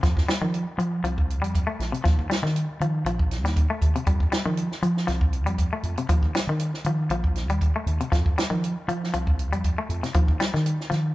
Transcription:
0.03 0.24 F2 medium
0.03 0.20 F3 medium
0.03 kick medium
0.03 snare soft
0.03 closed hi-hat medium
0.17 kick medium
0.17 snare soft
0.28 0.37 G3 medium
0.28 snare medium
0.28 closed hi-hat soft
0.41 0.58 D#3 medium
0.41 0.63 F3 medium
0.54 closed hi-hat medium
0.78 0.99 F3 medium
0.78 0.95 F3 medium
0.78 closed hi-hat soft
1.03 1.42 C2 medium
1.03 1.21 F3 medium
1.03 closed hi-hat medium
1.18 kick medium
1.30 closed hi-hat medium
1.42 1.63 F2 medium
1.42 1.59 G3 medium
1.42 closed hi-hat medium
1.55 kick medium
1.55 closed hi-hat medium
1.67 1.84 A3 medium
1.79 1.91 A#1 medium
1.79 snare soft
1.79 closed hi-hat medium
1.92 2.00 C3 medium
1.92 closed hi-hat soft
2.04 2.26 D#2 loud
2.04 2.21 F3 medium
2.04 kick medium
2.04 snare soft
2.04 closed hi-hat medium
2.19 kick medium
2.30 2.39 G3 medium
2.30 snare medium
2.30 closed hi-hat medium
2.42 2.64 D#3 medium
2.42 2.60 D#3 medium
2.42 snare soft
2.56 closed hi-hat medium
2.80 3.02 D#3 medium
2.80 2.98 F3 medium
2.80 closed hi-hat soft
3.05 3.44 A#1 medium
3.05 3.23 F3 medium
3.05 closed hi-hat medium
3.19 kick medium
3.31 snare soft
3.31 closed hi-hat medium
3.44 3.66 D#2 medium
3.44 3.61 G3 medium
3.44 snare soft
3.44 closed hi-hat soft
3.56 kick medium
3.56 closed hi-hat medium
3.70 3.87 A3 medium
3.82 3.93 D#2 medium
3.82 kick medium
3.82 closed hi-hat medium
3.96 4.03 C3 medium
3.96 closed hi-hat soft
4.07 4.28 F2 medium
4.07 4.24 G3 medium
4.07 kick medium
4.07 closed hi-hat medium
4.20 kick medium
4.32 4.41 G3 medium
4.32 snare medium
4.32 closed hi-hat soft
4.45 4.62 D#3 medium
4.45 4.67 F3 medium
4.57 closed hi-hat medium
4.72 snare soft
4.82 5.04 F3 medium
4.82 4.99 F3 medium
4.82 closed hi-hat soft
4.97 snare soft
5.07 5.47 C2 medium
5.07 5.24 F3 medium
5.07 snare soft
5.07 closed hi-hat medium
5.21 kick medium
5.33 closed hi-hat soft
5.46 5.68 F2 medium
5.46 5.63 G3 medium
5.46 closed hi-hat soft
5.58 kick medium
5.58 closed hi-hat medium
5.73 5.89 A3 medium
5.83 5.95 F2 medium
5.83 closed hi-hat medium
5.97 6.06 C3 medium
5.97 closed hi-hat medium
6.09 6.31 D#2 medium
6.09 6.26 F3 medium
6.09 kick medium
6.09 closed hi-hat medium
6.23 kick medium
6.35 6.44 G3 medium
6.35 snare medium
6.35 closed hi-hat medium
6.47 6.69 D#3 medium
6.47 6.66 D#3 medium
6.60 closed hi-hat medium
6.74 snare soft
6.84 7.06 D#3 medium
6.84 7.03 F3 medium
6.84 closed hi-hat soft
7.09 7.49 A#1 medium
7.09 7.28 F3 medium
7.09 closed hi-hat medium
7.24 kick medium
7.36 snare soft
7.36 closed hi-hat medium
7.49 7.71 D#2 medium
7.49 7.67 G3 medium
7.49 closed hi-hat soft
7.61 kick medium
7.61 closed hi-hat medium
7.76 7.92 A3 medium
7.86 7.98 D#2 medium
7.86 closed hi-hat soft
8.01 8.08 C3 medium
8.01 closed hi-hat soft
8.12 8.33 F2 loud
8.12 8.29 F3 medium
8.12 kick medium
8.12 snare soft
8.12 closed hi-hat medium
8.26 kick medium
8.38 8.47 G3 medium
8.38 snare medium
8.38 closed hi-hat soft
8.50 8.67 D#3 medium
8.50 8.72 F3 medium
8.64 closed hi-hat medium
8.88 9.09 F3 medium
8.88 9.05 F3 medium
8.88 closed hi-hat soft
9.04 snare soft
9.14 9.53 C2 medium
9.14 9.30 F3 medium
9.14 closed hi-hat medium
9.27 kick medium
9.39 closed hi-hat medium
9.53 9.74 F2 medium
9.53 9.69 G3 medium
9.53 closed hi-hat soft
9.64 kick medium
9.64 closed hi-hat medium
9.78 9.95 A3 medium
9.89 10.01 F2 medium
9.89 closed hi-hat medium
10.03 10.11 C3 medium
10.03 snare soft
10.03 closed hi-hat medium
10.14 10.36 D#2 medium
10.14 10.31 F3 medium
10.14 kick medium
10.14 closed hi-hat medium
10.28 kick medium
10.40 10.49 G3 medium
10.40 snare medium
10.40 closed hi-hat medium
10.54 10.70 D#3 medium
10.54 10.75 D#3 medium
10.54 snare soft
10.66 closed hi-hat medium
10.81 snare soft
10.90 11.12 D#3 medium
10.90 11.07 F3 medium
10.90 snare soft
10.90 closed hi-hat soft

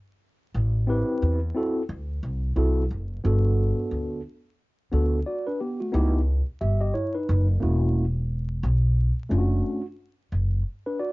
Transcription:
0.54 1.01 A1 loud
0.87 1.38 C4 medium
0.87 1.38 E4 medium
0.87 1.39 G4 medium
0.87 1.39 B4 medium
1.22 1.51 E2 medium
1.54 1.81 C4 medium
1.54 1.81 E4 medium
1.54 1.82 F#4 medium
1.54 1.82 A4 medium
1.89 2.18 D2 loud
2.23 2.52 C2 medium
2.56 2.85 C2 medium
2.56 2.82 C4 medium
2.56 2.82 E4 medium
2.56 2.83 F#4 medium
2.56 2.83 A4 medium
2.91 3.19 F#1 medium
3.24 3.71 G1 loud
3.24 4.20 B3 medium
3.24 4.20 D4 medium
3.24 4.21 F#4 medium
3.24 4.21 A4 medium
3.91 4.20 D2 medium
4.92 5.21 D2 medium
4.92 5.18 B3 medium
4.92 5.18 D4 medium
4.92 5.19 F#4 medium
4.92 5.19 A4 medium
5.26 5.46 F#4 medium
5.26 5.46 D5 medium
5.47 5.60 D4 medium
5.47 5.59 B4 medium
5.61 5.80 B3 medium
5.61 5.80 G4 medium
5.80 6.13 A3 medium
5.80 6.13 F#4 medium
5.92 6.40 C#2 loud
5.92 6.19 B3 medium
5.92 6.19 D#4 medium
5.92 6.20 E4 medium
5.92 6.20 G4 medium
6.61 6.90 G1 medium
6.61 6.80 G4 medium
6.61 6.81 E5 medium
6.81 6.94 G4 medium
6.81 6.94 D#5 medium
6.94 7.14 E4 medium
6.94 7.14 C#5 medium
7.14 7.47 D#4 medium
7.14 7.47 B4 medium
7.29 7.58 F#1 loud
7.60 8.60 E1 medium
7.60 8.03 A#3 medium
7.60 8.04 C#4 medium
7.60 8.04 E4 medium
7.60 8.05 F#4 medium
8.63 9.10 B1 loud
9.29 9.60 F#1 loud
9.29 9.80 A3 medium
9.29 9.81 C#4 medium
9.29 9.81 D4 medium
9.29 9.39 F4 medium
9.38 9.85 F#4 medium
10.32 10.61 F#1 medium
10.86 10.99 D4 medium
10.86 10.99 B4 medium
11.00 11.12 F#4 medium
11.00 11.12 D5 medium

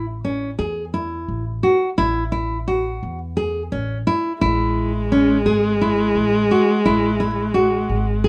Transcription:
0.00 0.55 A1 medium
0.25 0.50 C#4 medium
0.59 1.25 E2 medium
0.59 0.84 G#4 medium
0.94 1.44 E4 medium
1.28 1.61 A1 medium
1.63 1.88 F#4 medium
1.98 2.98 A1 medium
1.98 2.23 E4 medium
2.32 2.57 E4 medium
2.68 3.18 F#4 medium
3.03 3.68 E2 medium
3.37 3.62 G#4 medium
3.72 4.05 A1 medium
3.72 3.97 C#4 medium
4.07 4.32 E4 medium
4.41 5.42 A1 medium
4.41 8.29 G#3 medium
4.41 4.92 E4 medium
5.12 5.37 C#4 medium
5.46 6.11 G#1 medium
5.46 5.71 G#4 medium
5.81 6.31 E4 medium
6.15 6.48 A1 medium
6.51 6.76 F#4 medium
6.85 7.85 A1 medium
6.85 7.10 E4 medium
7.20 7.45 E4 medium
7.54 8.04 F#4 medium
7.89 8.29 G#1 medium
8.24 8.29 G#4 medium

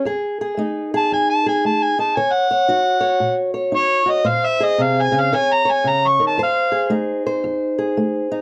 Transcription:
0.05 0.54 F2 medium
0.05 0.40 G#4 medium
0.41 0.93 G#4 medium
0.57 1.07 A3 medium
0.57 1.98 D#4 medium
0.94 1.45 G#4 medium
0.94 1.12 A5 loud
1.12 1.60 F2 medium
1.12 1.29 G#5 loud
1.30 1.46 A5 loud
1.46 2.15 G#4 medium
1.46 1.64 G#5 medium
1.65 2.13 A3 medium
1.65 1.84 A5 medium
1.83 1.99 G#5 loud
1.99 2.15 D#4 medium
1.99 2.18 A5 medium
2.16 2.66 D#3 medium
2.16 2.50 C#5 medium
2.16 2.34 G#5 medium
2.33 3.35 F#5 loud
2.51 3.00 C#5 medium
2.68 3.18 D#4 medium
2.68 4.05 F#4 medium
3.01 3.53 C#5 medium
3.20 3.70 A#2 medium
3.54 4.24 C#5 medium
3.72 4.22 D#4 medium
3.72 4.11 C#5 loud
4.06 4.23 F#4 medium
4.10 4.29 D#5 medium
4.24 4.75 A#2 medium
4.24 5.29 C5 medium
4.24 4.47 F5 loud
4.46 4.66 E5 loud
4.60 5.30 G#4 medium
4.60 4.84 D#5 medium
4.78 5.11 C3 medium
4.78 5.03 F5 loud
5.01 5.21 G#5 loud
5.12 5.31 C#3 medium
5.20 5.37 F5 medium
5.33 5.81 D#3 medium
5.33 5.64 C#5 medium
5.33 5.55 G#5 loud
5.53 5.73 A#5 medium
5.65 6.35 C#5 medium
5.71 5.90 G#5 medium
5.84 6.18 C#3 medium
5.89 6.09 A#5 medium
6.07 6.22 C#6 loud
6.20 6.38 D#3 medium
6.27 6.41 A5 medium
6.38 6.86 F2 medium
6.38 7.25 C5 medium
6.43 6.91 F5 loud
6.72 7.77 G#4 medium
6.90 7.39 A3 medium
6.90 8.30 D#4 medium
7.27 8.41 C5 medium
7.44 7.92 F2 medium
7.79 8.41 G#4 medium
7.97 8.41 A3 medium
8.32 8.41 D#4 medium

